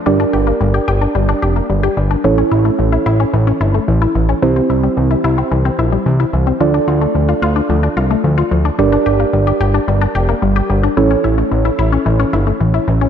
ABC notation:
X:1
M:4/4
L:1/16
Q:1/4=110
K:Gdor
V:1 name="Synth keys"
[DGBd]16 | [^CEA^c]16 | [CEGc]16 | [DFAd]16 |
[DGBd]16 | [^CEA^c]16 |]
V:2 name="Synth arpeggio sound"
G, D G B, G, G G D G, D G B, G, G G, D | E, ^C E A, E, E E C E, C E A, E, E E, C | E, C E G, E, E E C E, C E G, E, E E, C | F, D F A, F, F F D F, D F A, F, F F, D |
G, D G B, G, G G D G, D G B, G, G G, D | E, ^C E A, E, E E C E, C E A, E, E E, C |]
V:3 name="Analog synth bass" clef=bass
G,,,2 G,,,2 G,,,2 G,,,2 G,,,2 F,,,2 G,,,2 G,,,2 | A,,,2 A,,,2 A,,,2 A,,,2 A,,,2 G,,,2 A,,,2 A,,,2 | C,,2 C,,2 C,,2 C,,2 C,,2 B,,,2 C,,2 C,,2 | D,,2 D,,2 D,,2 D,,2 D,,2 C,,2 D,,2 D,,2 |
G,,,2 G,,,2 G,,,2 G,,,2 G,,,2 F,,,2 G,,,2 G,,,2 | A,,,2 A,,,2 A,,,2 A,,,2 A,,,2 G,,,2 A,,,2 A,,,2 |]